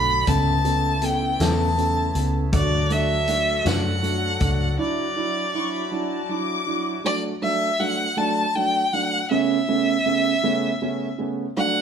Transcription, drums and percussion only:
0, 0, Header, 1, 2, 480
1, 0, Start_track
1, 0, Key_signature, 2, "major"
1, 0, Tempo, 751785
1, 177, Time_signature, 6, 3, 24, 8
1, 7544, End_track
2, 0, Start_track
2, 0, Title_t, "Drums"
2, 173, Note_on_c, 9, 42, 97
2, 175, Note_on_c, 9, 36, 114
2, 237, Note_off_c, 9, 42, 0
2, 239, Note_off_c, 9, 36, 0
2, 414, Note_on_c, 9, 42, 47
2, 477, Note_off_c, 9, 42, 0
2, 649, Note_on_c, 9, 42, 73
2, 713, Note_off_c, 9, 42, 0
2, 894, Note_on_c, 9, 42, 94
2, 901, Note_on_c, 9, 38, 117
2, 958, Note_off_c, 9, 42, 0
2, 965, Note_off_c, 9, 38, 0
2, 1139, Note_on_c, 9, 42, 42
2, 1203, Note_off_c, 9, 42, 0
2, 1372, Note_on_c, 9, 42, 59
2, 1436, Note_off_c, 9, 42, 0
2, 1612, Note_on_c, 9, 42, 100
2, 1615, Note_on_c, 9, 36, 122
2, 1676, Note_off_c, 9, 42, 0
2, 1679, Note_off_c, 9, 36, 0
2, 1853, Note_on_c, 9, 42, 51
2, 1917, Note_off_c, 9, 42, 0
2, 2091, Note_on_c, 9, 42, 79
2, 2155, Note_off_c, 9, 42, 0
2, 2335, Note_on_c, 9, 42, 89
2, 2342, Note_on_c, 9, 38, 113
2, 2399, Note_off_c, 9, 42, 0
2, 2406, Note_off_c, 9, 38, 0
2, 2577, Note_on_c, 9, 42, 49
2, 2641, Note_off_c, 9, 42, 0
2, 2811, Note_on_c, 9, 42, 58
2, 2815, Note_on_c, 9, 36, 89
2, 2875, Note_off_c, 9, 42, 0
2, 2879, Note_off_c, 9, 36, 0
2, 7544, End_track
0, 0, End_of_file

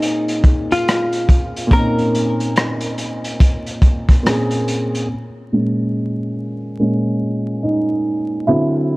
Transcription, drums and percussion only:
0, 0, Header, 1, 2, 480
1, 0, Start_track
1, 0, Key_signature, -5, "minor"
1, 0, Tempo, 845070
1, 972, Time_signature, 4, 2, 24, 8
1, 5094, End_track
2, 0, Start_track
2, 0, Title_t, "Drums"
2, 13, Note_on_c, 9, 42, 79
2, 70, Note_off_c, 9, 42, 0
2, 161, Note_on_c, 9, 42, 46
2, 218, Note_off_c, 9, 42, 0
2, 249, Note_on_c, 9, 36, 94
2, 249, Note_on_c, 9, 42, 60
2, 305, Note_off_c, 9, 36, 0
2, 306, Note_off_c, 9, 42, 0
2, 405, Note_on_c, 9, 42, 47
2, 462, Note_off_c, 9, 42, 0
2, 501, Note_on_c, 9, 42, 85
2, 504, Note_on_c, 9, 37, 104
2, 558, Note_off_c, 9, 42, 0
2, 561, Note_off_c, 9, 37, 0
2, 639, Note_on_c, 9, 42, 53
2, 696, Note_off_c, 9, 42, 0
2, 731, Note_on_c, 9, 36, 84
2, 735, Note_on_c, 9, 42, 62
2, 788, Note_off_c, 9, 36, 0
2, 792, Note_off_c, 9, 42, 0
2, 889, Note_on_c, 9, 42, 47
2, 946, Note_off_c, 9, 42, 0
2, 972, Note_on_c, 9, 36, 105
2, 974, Note_on_c, 9, 42, 66
2, 1029, Note_off_c, 9, 36, 0
2, 1031, Note_off_c, 9, 42, 0
2, 1127, Note_on_c, 9, 42, 36
2, 1184, Note_off_c, 9, 42, 0
2, 1219, Note_on_c, 9, 42, 58
2, 1276, Note_off_c, 9, 42, 0
2, 1364, Note_on_c, 9, 42, 38
2, 1421, Note_off_c, 9, 42, 0
2, 1454, Note_on_c, 9, 42, 77
2, 1462, Note_on_c, 9, 37, 106
2, 1510, Note_off_c, 9, 42, 0
2, 1519, Note_off_c, 9, 37, 0
2, 1593, Note_on_c, 9, 42, 57
2, 1650, Note_off_c, 9, 42, 0
2, 1691, Note_on_c, 9, 42, 67
2, 1748, Note_off_c, 9, 42, 0
2, 1842, Note_on_c, 9, 42, 50
2, 1899, Note_off_c, 9, 42, 0
2, 1933, Note_on_c, 9, 36, 92
2, 1934, Note_on_c, 9, 42, 81
2, 1990, Note_off_c, 9, 36, 0
2, 1990, Note_off_c, 9, 42, 0
2, 2082, Note_on_c, 9, 42, 44
2, 2139, Note_off_c, 9, 42, 0
2, 2169, Note_on_c, 9, 36, 94
2, 2171, Note_on_c, 9, 42, 59
2, 2226, Note_off_c, 9, 36, 0
2, 2228, Note_off_c, 9, 42, 0
2, 2321, Note_on_c, 9, 36, 83
2, 2326, Note_on_c, 9, 42, 50
2, 2333, Note_on_c, 9, 37, 29
2, 2378, Note_off_c, 9, 36, 0
2, 2382, Note_off_c, 9, 42, 0
2, 2390, Note_off_c, 9, 37, 0
2, 2421, Note_on_c, 9, 42, 80
2, 2423, Note_on_c, 9, 37, 101
2, 2477, Note_off_c, 9, 42, 0
2, 2480, Note_off_c, 9, 37, 0
2, 2559, Note_on_c, 9, 42, 53
2, 2616, Note_off_c, 9, 42, 0
2, 2657, Note_on_c, 9, 42, 61
2, 2714, Note_off_c, 9, 42, 0
2, 2810, Note_on_c, 9, 42, 47
2, 2867, Note_off_c, 9, 42, 0
2, 5094, End_track
0, 0, End_of_file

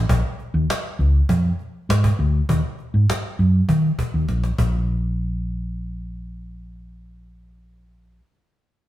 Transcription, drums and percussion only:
0, 0, Header, 1, 2, 480
1, 0, Start_track
1, 0, Key_signature, -5, "minor"
1, 0, Tempo, 598982
1, 75, Time_signature, 4, 2, 24, 8
1, 7120, End_track
2, 0, Start_track
2, 0, Title_t, "Cajon"
2, 75, Note_on_c, 9, 36, 115
2, 155, Note_off_c, 9, 36, 0
2, 314, Note_on_c, 9, 38, 40
2, 394, Note_off_c, 9, 38, 0
2, 562, Note_on_c, 9, 38, 127
2, 642, Note_off_c, 9, 38, 0
2, 797, Note_on_c, 9, 38, 48
2, 877, Note_off_c, 9, 38, 0
2, 1035, Note_on_c, 9, 36, 92
2, 1115, Note_off_c, 9, 36, 0
2, 1276, Note_on_c, 9, 38, 43
2, 1356, Note_off_c, 9, 38, 0
2, 1523, Note_on_c, 9, 38, 119
2, 1603, Note_off_c, 9, 38, 0
2, 1635, Note_on_c, 9, 36, 91
2, 1715, Note_off_c, 9, 36, 0
2, 1996, Note_on_c, 9, 36, 110
2, 2076, Note_off_c, 9, 36, 0
2, 2234, Note_on_c, 9, 38, 40
2, 2314, Note_off_c, 9, 38, 0
2, 2481, Note_on_c, 9, 38, 127
2, 2561, Note_off_c, 9, 38, 0
2, 2714, Note_on_c, 9, 38, 44
2, 2795, Note_off_c, 9, 38, 0
2, 2954, Note_on_c, 9, 36, 83
2, 3035, Note_off_c, 9, 36, 0
2, 3195, Note_on_c, 9, 36, 90
2, 3275, Note_off_c, 9, 36, 0
2, 3434, Note_on_c, 9, 38, 58
2, 3514, Note_off_c, 9, 38, 0
2, 3554, Note_on_c, 9, 38, 60
2, 3634, Note_off_c, 9, 38, 0
2, 3674, Note_on_c, 9, 36, 100
2, 3754, Note_off_c, 9, 36, 0
2, 7120, End_track
0, 0, End_of_file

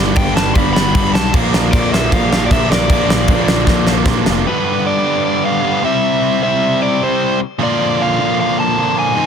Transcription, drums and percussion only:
0, 0, Header, 1, 2, 480
1, 0, Start_track
1, 0, Tempo, 390879
1, 1646, Time_signature, 4, 2, 24, 8
1, 11374, End_track
2, 0, Start_track
2, 0, Title_t, "Drums"
2, 193, Note_on_c, 9, 49, 76
2, 203, Note_on_c, 9, 36, 127
2, 315, Note_off_c, 9, 49, 0
2, 326, Note_off_c, 9, 36, 0
2, 453, Note_on_c, 9, 38, 104
2, 576, Note_off_c, 9, 38, 0
2, 678, Note_on_c, 9, 49, 72
2, 683, Note_on_c, 9, 36, 108
2, 801, Note_off_c, 9, 49, 0
2, 805, Note_off_c, 9, 36, 0
2, 938, Note_on_c, 9, 38, 107
2, 1061, Note_off_c, 9, 38, 0
2, 1163, Note_on_c, 9, 49, 76
2, 1166, Note_on_c, 9, 36, 123
2, 1286, Note_off_c, 9, 49, 0
2, 1289, Note_off_c, 9, 36, 0
2, 1415, Note_on_c, 9, 38, 126
2, 1538, Note_off_c, 9, 38, 0
2, 1645, Note_on_c, 9, 36, 127
2, 1650, Note_on_c, 9, 49, 77
2, 1768, Note_off_c, 9, 36, 0
2, 1773, Note_off_c, 9, 49, 0
2, 1894, Note_on_c, 9, 38, 117
2, 2016, Note_off_c, 9, 38, 0
2, 2126, Note_on_c, 9, 36, 127
2, 2136, Note_on_c, 9, 49, 75
2, 2249, Note_off_c, 9, 36, 0
2, 2259, Note_off_c, 9, 49, 0
2, 2384, Note_on_c, 9, 38, 113
2, 2507, Note_off_c, 9, 38, 0
2, 2606, Note_on_c, 9, 36, 105
2, 2615, Note_on_c, 9, 49, 67
2, 2729, Note_off_c, 9, 36, 0
2, 2737, Note_off_c, 9, 49, 0
2, 2856, Note_on_c, 9, 38, 106
2, 2979, Note_off_c, 9, 38, 0
2, 3082, Note_on_c, 9, 36, 118
2, 3092, Note_on_c, 9, 49, 68
2, 3204, Note_off_c, 9, 36, 0
2, 3215, Note_off_c, 9, 49, 0
2, 3338, Note_on_c, 9, 38, 127
2, 3461, Note_off_c, 9, 38, 0
2, 3558, Note_on_c, 9, 36, 127
2, 3566, Note_on_c, 9, 49, 75
2, 3680, Note_off_c, 9, 36, 0
2, 3689, Note_off_c, 9, 49, 0
2, 3812, Note_on_c, 9, 38, 120
2, 3935, Note_off_c, 9, 38, 0
2, 4027, Note_on_c, 9, 49, 65
2, 4032, Note_on_c, 9, 36, 122
2, 4150, Note_off_c, 9, 49, 0
2, 4155, Note_off_c, 9, 36, 0
2, 4278, Note_on_c, 9, 38, 116
2, 4401, Note_off_c, 9, 38, 0
2, 4508, Note_on_c, 9, 36, 106
2, 4510, Note_on_c, 9, 38, 69
2, 4630, Note_off_c, 9, 36, 0
2, 4633, Note_off_c, 9, 38, 0
2, 4747, Note_on_c, 9, 38, 78
2, 4870, Note_off_c, 9, 38, 0
2, 4982, Note_on_c, 9, 36, 119
2, 4982, Note_on_c, 9, 38, 104
2, 5105, Note_off_c, 9, 36, 0
2, 5105, Note_off_c, 9, 38, 0
2, 5235, Note_on_c, 9, 38, 103
2, 5357, Note_off_c, 9, 38, 0
2, 11374, End_track
0, 0, End_of_file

